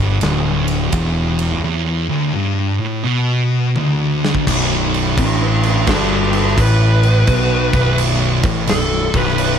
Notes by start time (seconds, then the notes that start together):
Already playing: G1
0.00 G2
0.21 D1 D2, snare, ride
0.68 ride
0.92 E1 E2, kick, ride
1.39 ride
1.64 E2
2.11 D2
2.37 G2
2.81 A2
3.07 B2
3.76 D2, high tom
4.25 snare
4.35 kick
4.47 B0 B1, kick, crash
4.94 crash
5.17 A1 A2 D4 B4, kick, crash
5.42 D4 B4
5.63 D4, crash
5.68 B4
5.87 G1 G2 F#4 A4, kick, snare, crash
6.12 F#4 A4
6.33 F#4, crash
6.38 A4
6.47 snare
6.57 A1 A2 B4, kick, crash
7.03 crash
7.27 B1 B2, kick, crash
7.73 B0 B1, kick, crash
7.98 crash
8.43 A1 A2, kick, crash
8.67 B0 B1 A4, snare, crash
9.14 B0 B1 B4, kick, crash
9.28 snare
9.38 crash